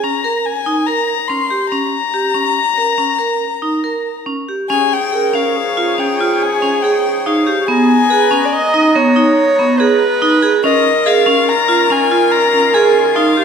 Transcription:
0.04 vibraphone C#4, violin A#5
0.24 vibraphone A#4
0.46 violin G#5
0.66 vibraphone D#4
0.86 vibraphone A#4, violin A#5
1.28 vibraphone C#4, violin C6
1.50 vibraphone G4
1.70 vibraphone C#4, violin A#5
2.14 vibraphone G4
2.34 vibraphone C#4
2.78 vibraphone A#4
2.98 vibraphone C#4
3.19 vibraphone A#4
3.62 vibraphone D#4
3.84 vibraphone A#4
4.26 vibraphone C#4
4.48 vibraphone G4
4.69 woodwind section F3 D#4 C#5, vibraphone C#4, viola G#4, violin G#5
4.93 violin G5
5.12 vibraphone G#4, viola A#4
5.34 vibraphone C#4, violin F5
5.56 viola G#4
5.77 vibraphone F4
5.98 vibraphone C#4, violin G5
6.20 vibraphone F4
6.42 violin G#5
6.62 vibraphone C#4
6.82 vibraphone G#4, violin G5
7.26 vibraphone D#4, violin F5
7.47 vibraphone G4
7.68 woodwind section G#3 B3 A#5, vibraphone B3, viola G#4, violin G#5
8.10 vibraphone G#4, viola B4
8.31 vibraphone C#4
8.45 viola D5
8.53 viola D#5
8.74 vibraphone D#4
8.95 vibraphone B3, viola C#5
9.16 vibraphone D#4
9.59 vibraphone B3
9.79 vibraphone G#4, viola B4
10.22 vibraphone D#4
10.42 vibraphone G#4
10.62 woodwind section D#3 C#4 F4, vibraphone C#4, viola A#4, violin D#5
11.06 vibraphone G#4, violin F5
11.26 vibraphone C#4
11.49 violin A#5
11.68 vibraphone F4
11.90 vibraphone C#4, violin G#5
12.11 vibraphone F4
12.32 violin A#5
12.53 vibraphone C#4
12.74 vibraphone G#4, violin G#5
13.16 vibraphone D#4, violin F5
13.37 vibraphone G4

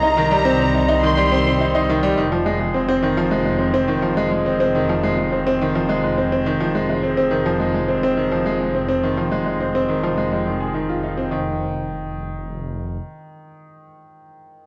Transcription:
Already playing: detuned saw bass C2, violin section A#5
0.03 grand piano D#4
0.17 grand piano D#3
0.31 grand piano G3
0.45 grand piano C4
0.60 grand piano C4
0.74 grand piano D#4
0.88 grand piano D#4
1.02 grand piano D#3, violin section C6
1.17 grand piano G3
1.32 grand piano C4
1.46 grand piano C4
1.60 grand piano D#4
1.75 grand piano D#4
1.90 grand piano D#3
2.03 grand piano G3
2.17 detuned saw bass F1, grand piano D#3
2.32 grand piano F3
2.46 grand piano G#3
2.60 grand piano G#3
2.74 grand piano C4
2.88 grand piano C4
3.02 grand piano D#3
3.17 grand piano F3
3.31 grand piano G#3
3.45 grand piano G#3
3.59 grand piano C4
3.74 grand piano C4
3.88 grand piano D#3
4.02 grand piano F3
4.17 grand piano G#3
4.32 grand piano G#3
4.46 grand piano C4
4.60 grand piano C4
4.75 grand piano D#3
4.89 grand piano F3
5.03 grand piano G#3
5.18 grand piano G#3
5.32 grand piano C4
5.47 grand piano C4
5.61 grand piano D#3
5.75 grand piano F3
5.89 grand piano G#3
6.03 grand piano G#3
6.18 grand piano C4
6.32 grand piano C4
6.46 grand piano D#3
6.60 grand piano F3
6.75 grand piano G#3
6.89 grand piano G#3
7.03 grand piano C4
7.17 grand piano C4
7.31 grand piano D#3
7.46 grand piano F3
7.60 grand piano G#3
7.74 grand piano G#3
7.88 grand piano C4
8.03 grand piano C4
8.17 grand piano D#3
8.32 grand piano F3
8.46 grand piano G#3
8.60 grand piano G#3
8.75 grand piano C4
8.89 grand piano C4
9.03 grand piano D#3
9.18 grand piano F3
9.32 grand piano G#3
9.46 grand piano G#3
9.60 grand piano C4
9.75 grand piano C4
9.89 grand piano D#3
10.03 grand piano F3
10.17 grand piano G#3
10.32 grand piano G#3
10.46 grand piano D#3
10.60 grand piano G#4
10.74 grand piano D#3
10.89 grand piano F4
11.03 grand piano D#4
11.18 grand piano C4
11.31 detuned saw bass F1, grand piano D#3

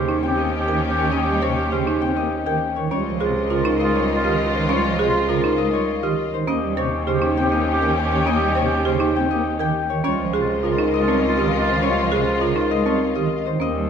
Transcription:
Already playing: cello D#2, string section C#4 G4, marimba G4, clarinet G4, harp A#4 C5 C#5 D#5
0.09 marimba D#4
0.23 pipe organ C4, harp G5
0.27 clarinet G4
0.38 pipe organ A#3, harp D#5
0.58 clarinet G4
0.68 pipe organ D#3, marimba A#4, harp G5
0.90 clarinet G4
0.98 pipe organ D#3, harp C#5
1.11 marimba C#4, harp D#5
1.20 clarinet G4
1.28 pipe organ G3
1.42 pipe organ C3, marimba C5, harp C#5
1.52 clarinet G4
1.72 pipe organ C#3, marimba G4, harp C5
1.83 marimba D#4, clarinet G4
2.02 pipe organ C4, harp G5
2.14 pipe organ A#3, clarinet G4, harp D#5
2.45 pipe organ D#3, clarinet G4, marimba A#4, harp G5
2.76 pipe organ D#3, harp C#5
2.91 cello C#2, pipe organ G3, marimba C#4, string section F4 D#5, clarinet F4, harp C#5
3.07 pipe organ F3
3.20 pipe organ C3, clarinet F4, marimba G#4, harp C5
3.50 pipe organ C#3, marimba F4, clarinet F4, harp A#4
3.65 marimba D#4
3.80 pipe organ G#3, clarinet F4, harp D#5
3.95 pipe organ G3, harp C#5
4.15 clarinet F4
4.24 pipe organ D#3, marimba G4, harp D#5
4.45 clarinet F4
4.54 pipe organ D#3, harp C5
4.69 pipe organ G3, marimba C#4, harp C#5
4.76 clarinet F4
4.84 pipe organ F3
4.99 pipe organ C3, marimba G#4, harp C5
5.07 clarinet F4
5.29 pipe organ C#3, marimba F4, harp A#4
5.39 clarinet F4
5.44 marimba D#4
5.58 pipe organ G#3, harp D#5
5.70 pipe organ G3, clarinet F4, harp C#5
6.00 pipe organ D#3, clarinet F4, marimba G4, harp D#5
6.32 pipe organ D#3, harp C5
6.47 cello D#2, pipe organ A#3, marimba C#4, string section C#4 G4, clarinet G4, harp D#5
6.63 pipe organ G3
6.77 pipe organ C3, clarinet G4, marimba C5, harp C#5
7.07 pipe organ C#3, marimba G4, clarinet G4, harp C5
7.22 marimba D#4
7.37 pipe organ C4, clarinet G4, harp G5
7.52 pipe organ A#3, harp D#5
7.72 clarinet G4
7.81 pipe organ D#3, marimba A#4, harp G5
8.03 clarinet G4
8.10 pipe organ D#3, harp C#5
8.26 pipe organ A#3, marimba C#4, harp D#5
8.34 clarinet G4
8.41 pipe organ G3
8.55 pipe organ C3, marimba C5, harp C#5
8.65 clarinet G4
8.85 pipe organ C#3, marimba G4, harp C5
8.96 marimba D#4, clarinet G4
9.16 pipe organ C4, harp G5
9.27 pipe organ A#3, clarinet G4, harp D#5
9.58 pipe organ D#3, clarinet G4, marimba A#4, harp G5
9.90 pipe organ D#3, harp C#5
10.04 cello C#2, pipe organ G3, marimba C#4, clarinet F4, string section F4 D#5, harp C#5
10.20 pipe organ F3
10.33 pipe organ C3, clarinet F4, marimba G#4, harp C5
10.63 pipe organ C#3, marimba F4, clarinet F4, harp A#4
10.78 marimba D#4
10.94 pipe organ G#3, clarinet F4, harp D#5
11.08 pipe organ G3, marimba C4, harp C#5
11.28 clarinet F4
11.37 pipe organ D#3, marimba G4, harp D#5
11.58 clarinet F4
11.68 pipe organ D#3, harp C5
11.82 pipe organ G3, marimba C#4, harp C#5
11.89 clarinet F4
11.98 pipe organ F3
12.12 pipe organ C3, marimba G#4, harp C5
12.20 clarinet F4
12.41 pipe organ C#3, marimba F4, harp A#4
12.52 clarinet F4
12.56 marimba D#4
12.71 pipe organ G#3, harp D#5
12.83 marimba C4, clarinet F4, harp C#5
12.87 pipe organ G3
13.14 pipe organ D#3, clarinet F4, marimba G4, harp D#5
13.46 pipe organ D#3, harp C5
13.60 cello D#2, pipe organ A#3, marimba C#4, string section C#4 G4, clarinet G4, harp D#5
13.76 pipe organ G3

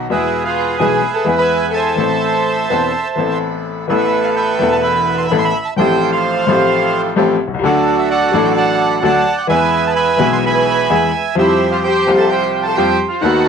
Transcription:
0.09 upright piano E2 B2 G#3 B3 G#4, bandoneon B3 G#4 B4 E5, violin section E4
0.44 violin section F4, bandoneon G#4 B4 F5
0.78 upright piano B1 B2 E3 G#3 B3 G#4, bandoneon B3 E4 G#4 B4 E5 G#5, violin section G#4
1.14 violin section A4, bandoneon A5
1.24 upright piano E2 E3 G#3 B3 G#4, bandoneon B3 E4 G#4
1.37 violin section B4, bandoneon B5
1.41 bandoneon E5 G#5
1.71 violin section A4, bandoneon A5
1.76 bandoneon C5 E5
1.96 upright piano A1 A2 E3 A3 C4, bandoneon A4 C5
2.00 upright piano A4
2.69 upright piano E1 E2 E3 B3 C4 A4, bandoneon C4 A4 B4
3.16 upright piano A1 A2 E3 B3 C4, bandoneon A4 B4
3.20 upright piano A4
3.88 upright piano A1 A2 E3 A3 B3, bandoneon E4 A4 B4 E5
3.92 upright piano A4
4.24 bandoneon F5
4.36 bandoneon B4 E5 G5
4.59 upright piano E1 E2 E3 A3 B3, bandoneon E4 A4 B4
4.63 upright piano A4
4.72 bandoneon A5
4.82 bandoneon E5 B5
5.18 bandoneon C6
5.28 upright piano A1 A2 E3 A4, bandoneon E4 A4 B4 B5
5.32 upright piano A3 B3
5.38 bandoneon C6
5.45 bandoneon B5
5.65 bandoneon A5
5.77 upright piano A1 A2 F3 A3 C4 G4, bandoneon A3 F4 G4 A4 C5 G5
6.12 bandoneon C5 F5
6.46 upright piano A1 A2 F3 A3 C4 G4, bandoneon A3 F4 G4 A4
7.16 upright piano A1 A2 F3 A3 C4 G4, bandoneon A3 F4 G4 A4
7.48 upright piano B1
7.54 upright piano C2
7.59 upright piano C#2 F#3
7.63 upright piano D2 D3 A3 D4 A4, bandoneon D4 F#4 A4 D5
7.98 bandoneon E5
8.11 bandoneon A4 D5 F#5
8.32 upright piano A1 A2 F#3 A3 D4, bandoneon D4 F#4 A4
8.36 upright piano A4
8.45 bandoneon G5
8.56 bandoneon D5 F#5 A5
8.91 bandoneon B5
9.01 upright piano D2 D3 F#3 A3 D4 A4, bandoneon D4 F#4 A4 D5 F#5 A5
9.38 bandoneon G5
9.47 upright piano E2 E3 G#3 B3, bandoneon B3 E4 G#4 B4 E5 G#5
9.51 upright piano G#4
9.87 bandoneon A5
9.96 bandoneon E5 G#5 B5
10.17 upright piano B1 B2 E3 G#3 B3, bandoneon B3 E4 G#4
10.21 upright piano G#4
10.33 bandoneon C6
10.44 violin section B4, bandoneon E5 G#5 B5
10.90 upright piano E2 E3 G#3 B3 G#4, bandoneon B3 E4 G#4
11.35 upright piano F2 F3 G3 C4 G4, bandoneon F3 C4 G4 C5 E5, violin section E4
11.71 violin section F4, bandoneon F5
11.84 violin section G4, bandoneon C5 G5
12.06 upright piano C2 C3 F3 G3 C4 G4, bandoneon C4 F4 G4
12.18 violin section A4, bandoneon A5
12.29 violin section G4, bandoneon C5 G5
12.63 violin section A4, bandoneon A5
12.75 upright piano F2 F3 G3 C4 G4, bandoneon C4 F4 G4 C5 G5, violin section G4
13.08 violin section F4, bandoneon F5
13.21 upright piano D#2 D#3 A3 B3, bandoneon D#3 B3 D#4 A4 B4 F#5, violin section F#4
13.26 upright piano F#4

